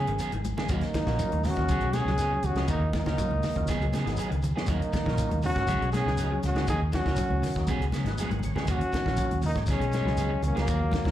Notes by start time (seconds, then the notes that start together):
Already playing: C#4 G#4
0.07 G#1 D#3, closed hi-hat
0.19 F#3 B3 C#4 G#4, closed hi-hat, shekere
0.32 G#1 D#3, muted clean electric guitar stroke, closed hi-hat, high conga
0.44 muted clean electric guitar stroke, closed hi-hat, high conga, shekere
0.57 C#3 B3 C#4 G#4, snare, low conga
0.69 D#2 F#3 A#3 C#4 D#4 F#4, kick, closed hi-hat, shekere
0.74 A#3
0.81 muted clean electric guitar stroke, snare, closed hi-hat
0.94 D#3, muted clean electric guitar stroke, muted fingered electric bass stroke, kick, snare, closed hi-hat, high conga, shekere
1.06 A#1 F#3 A#3 C#4 F4 F#4, kick, snare
1.19 F#3, muted clean electric guitar stroke, kick, closed hi-hat, shekere
1.32 D#2, muted clean electric guitar stroke, closed hi-hat, high conga
1.44 D#3 C#4, muted clean electric guitar stroke, snare, open hi-hat, high conga, low conga, shekere
1.48 F#4
1.56 D#2 F#3 A#3 C#4 F4, muted clean electric guitar stroke, kick, snare, closed hi-hat
1.68 C#2 F#3 B3 C#4 G#4, kick, closed hi-hat, shekere
1.81 B1 G#3, closed hi-hat
1.93 F#3 B3 C#4 G#4, snare, closed hi-hat, high conga, shekere
1.97 C#4
2.05 C#2 F#3 G#3 B3 D#4 F#4, snare
2.18 B3 C#4 G#4, snare, closed hi-hat, shekere
2.33 F#3, muted clean electric guitar stroke
2.43 C#2 C#4 F#4, muted clean electric guitar stroke, closed hi-hat, low conga, shekere
2.55 C#2 F3 G#3 B3 C#4 D#4 F#4 G#4, snare, closed hi-hat
2.68 D#2 D#3 A#3 C#4 D#4 F#4, kick, closed hi-hat, shekere
2.82 muted clean electric guitar stroke
2.93 D#3 A#3, muted clean electric guitar stroke, kick, snare, closed hi-hat, high conga, shekere
2.98 D#4
3.06 C#2 F#3 A#3 C#4 F4 F#4, kick, snare, closed hi-hat, high conga, low conga
3.18 F#3, muted clean electric guitar stroke, kick, closed hi-hat, shekere
3.30 C#2, muted clean electric guitar stroke, high conga
3.43 D#3, muted clean electric guitar stroke, snare, open hi-hat, high conga, low conga, shekere
3.56 D#2 F#3 A#3 C#4 F4, muted clean electric guitar stroke, kick, closed hi-hat
3.67 B2 F#3 B3 C#4 G#4, muted fingered electric bass stroke, kick, snare, closed hi-hat, high conga, shekere
3.80 C#2 F#3, closed hi-hat
3.92 C#3 F#3 B3 G#4, snare, closed hi-hat, high conga, shekere
4.05 G#1 D#3 F#3 G#3 B3 D#4, snare, closed hi-hat
4.17 F#3 B3 C#4 G#4, closed hi-hat, shekere
4.30 C#2 D#3, muted clean electric guitar stroke, closed hi-hat
4.42 muted clean electric guitar stroke, closed hi-hat, low conga, shekere
4.56 F#3 G#3 B3 C#4 G#4, snare
4.66 D#2 F#3 A#3 C#4 D#4 F#4, kick, closed hi-hat, shekere
4.81 muted clean electric guitar stroke, closed hi-hat
4.93 D#3, muted clean electric guitar stroke, muted fingered electric bass stroke, kick, snare, closed hi-hat, high conga, shekere
5.06 A#1 F#3 A#3 C#4 F4 F#4, kick, snare, low conga
5.18 F#3, muted clean electric guitar stroke, kick, closed hi-hat, shekere
5.30 D#2, muted clean electric guitar stroke, closed hi-hat, high conga
5.42 D#3 C#4 F#4, muted clean electric guitar stroke, open hi-hat, high conga, low conga, shekere
5.56 G#2 F#3 A#3 C#4 F4, muted clean electric guitar stroke, kick, snare, closed hi-hat
5.67 C#2 F#3 B3 C#4 G#4, kick, closed hi-hat, high conga, shekere
5.81 B1 G#3, closed hi-hat
5.92 F#3 B3 C#4 G#4, snare, closed hi-hat, high conga, shekere
6.06 C#2 F#3 G#3 B3 D#4 F#4, snare
6.17 F#3 B3 C#4 G#4, closed hi-hat, shekere
6.31 F#3, muted clean electric guitar stroke
6.43 C#2 C#4 F#4, muted clean electric guitar stroke, snare, closed hi-hat, high conga, low conga, shekere
6.55 C#2 F3 G#3 B3 C#4 D#4 F#4 G#4, snare, closed hi-hat
6.67 D#2 D#3 A#3 C#4 D#4 F#4 G#4, kick, closed hi-hat, shekere
6.81 muted clean electric guitar stroke
6.92 D#3 C#4 F#4, muted clean electric guitar stroke, kick, snare, closed hi-hat, high conga, shekere
7.06 C#2 F#3 A#3 C#4 F4 F#4, kick, snare, closed hi-hat
7.16 F#3, muted clean electric guitar stroke, kick, closed hi-hat, shekere
7.30 C#2, muted clean electric guitar stroke, high conga
7.42 D#3, muted fingered electric bass stroke, muted clean electric guitar stroke, snare, open hi-hat, high conga, low conga, shekere
7.56 D#2 F#3 A#3 C#4 D#4, muted clean electric guitar stroke, kick, snare, closed hi-hat
7.67 B2 F#3 B3 C#4 G#4, muted fingered electric bass stroke, kick, closed hi-hat, high conga, shekere
7.79 C#2 C#3, closed hi-hat
7.91 C#3 F#3 B3 C#4, snare, closed hi-hat, high conga, shekere
8.04 G#1 D#3 G#3 B3 D#4 F#4, snare, closed hi-hat, high conga
8.18 F#3 B3 C#4 G#4 F#5, closed hi-hat, shekere
8.22 high conga
8.31 G#1 D#3, muted clean electric guitar stroke, closed hi-hat, high conga
8.39 closed hi-hat, low conga, shekere
8.43 C#5, muted clean electric guitar stroke
8.48 low conga
8.56 C#3 G#3 B3 C#4 D#4 F#4 G#4, snare, low conga
8.65 D#2 A#3 C#4 F#4, muted clean electric guitar stroke, kick, closed hi-hat, low conga, shekere
8.70 C#4 F#4
8.81 muted clean electric guitar stroke, closed hi-hat
8.92 D#3, muted fingered electric bass stroke, muted clean electric guitar stroke, kick, snare, closed hi-hat, high conga, shekere
9.06 A#1 F#3 A#3 C#4 F4 F#4, kick, snare, low conga
9.17 F#3, muted clean electric guitar stroke, kick, closed hi-hat, shekere
9.31 D#2, muted clean electric guitar stroke, closed hi-hat, high conga
9.42 A#3 D#4, muted clean electric guitar stroke, open hi-hat, high conga, low conga, shekere
9.55 G#2 F#3 A#3 C#4 G#4, muted clean electric guitar stroke, kick, snare, closed hi-hat
9.66 C#2 F#3 B3 C#4, kick, snare, closed hi-hat, shekere
9.70 G#3 C#4 G#4
9.80 B1 G#3, closed hi-hat
9.92 F#3 B3 C#4 G#4, snare, closed hi-hat, high conga, shekere
10.05 C#2 F#3 G#3 B3 D#4, snare
10.17 F#3 B3 C#4 G#4, closed hi-hat, shekere
10.31 F#3, muted clean electric guitar stroke
10.42 C#2 C#4, muted clean electric guitar stroke, closed hi-hat, high conga, low conga, shekere
10.47 A#3
10.55 C#2 F3 F#3 G#3 B3 C#4 G#4, snare, closed hi-hat
10.59 A#3
10.67 D#2 D#3 A#3 F#4, muted clean electric guitar stroke, kick, closed hi-hat, shekere
10.81 muted clean electric guitar stroke
10.91 D#3, muted clean electric guitar stroke, kick, snare, closed hi-hat, high conga, shekere
11.04 C#2 F#3 A#3 C#4 F4 F#4, kick, snare, closed hi-hat, high conga, low conga